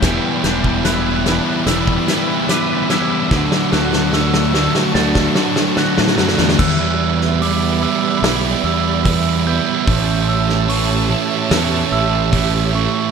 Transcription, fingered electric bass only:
\new Staff \with { instrumentName = "Fingered electric bass" } { \clef bass \time 4/4 \key e \dorian \tempo 4 = 73 e,,16 r16 e,,4. e,,8 r4. | d,16 r16 d,4. d,8 r8. a,16 fis,16 e,16 | e,2 b,,8 e,4. | a,,2 e,8 a,,4. | }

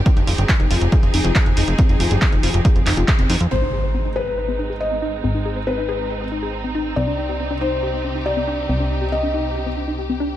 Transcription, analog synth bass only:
\new Staff \with { instrumentName = "Analog synth bass" } { \clef bass \time 4/4 \key aes \lydian \tempo 4 = 139 r16 f,,16 f,,16 g,,16 r16 f,,16 f,,16 f,,16 r16 f,,16 f,,16 f,,16 r16 f,,16 f,,16 f,,16 | r16 f,,16 f,,16 g,,16 r16 f,,16 f,,16 f,,16 r16 f,,16 f,,16 f,,16 r16 f,,16 f,16 f,16 | aes,,1 | aes,,1 |
c,1 | c,1 | }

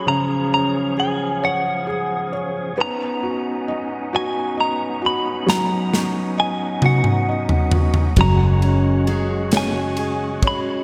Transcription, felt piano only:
\new Staff \with { instrumentName = "Felt piano" } { \time 6/8 \key fis \major \tempo 4. = 44 <cis gis' cis''>8 cis'8 gis'8 cis''8 gis'8 cis''8 | b8 fis'8 dis''8 fis'8 dis''8 fis'8 | fis8 fis'8 dis''8 fis'8 dis''8 fis'8 | fis8 cis'8 gis'8 cis''8 gis'8 cis''8 | }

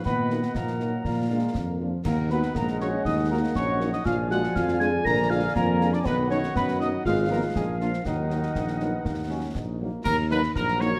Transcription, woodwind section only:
\new Staff \with { instrumentName = "Woodwind section" } { \time 2/4 \key ees \minor \tempo 4 = 120 << { ges''2 | f''4. r8 | ges''2~ | ges''2 |
aes''2~ | aes''2 | fis''2 | f''2 |
ges''2~ | ges''4. r8 | bes'8 ces''8 bes'8 des''8 | } \\ { ees''2 | d''4. r8 | ees''2~ | ees''2 |
d''2~ | d''2 | dis''2 | ces''4 bes'4 |
bes'2~ | bes'4. r8 | r2 | } >> }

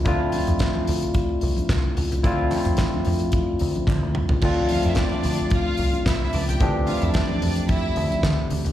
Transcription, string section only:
\new Staff \with { instrumentName = "String section" } { \time 4/4 \key d \minor \tempo 4 = 110 r1 | r1 | r8 <f' f''>16 <e' e''>16 <d' d''>4 <f' f''>4 <e' e''>16 <e' e''>16 <d' d''>16 <g' g''>16 | r8 <f' f''>16 <e' e''>16 <d' d''>4 <e' e''>4 r4 | }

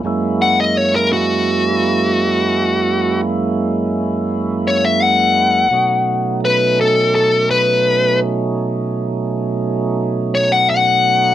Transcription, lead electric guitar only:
\new Staff \with { instrumentName = "Lead electric guitar" } { \time 4/4 \key b \major \tempo 4 = 85 r8 fis''16 dis''16 cis''16 ais'16 fis'2~ fis'8~ | fis'8 r2 cis''16 e''16 fis''4~ | fis''4 b'8 a'8 a'8 b'4 r8 | r2 r8 cis''16 fis''16 fis''4 | }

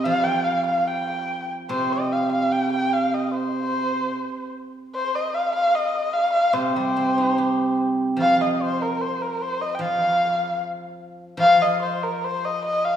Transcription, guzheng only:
\new Staff \with { instrumentName = "Guzheng" } { \clef bass \time 2/4 \tempo 4 = 74 f2 | c2~ | c4 r4 | r2 |
c16 g16 c'16 ees'16 g'4 | f2 | f2 | f2 | }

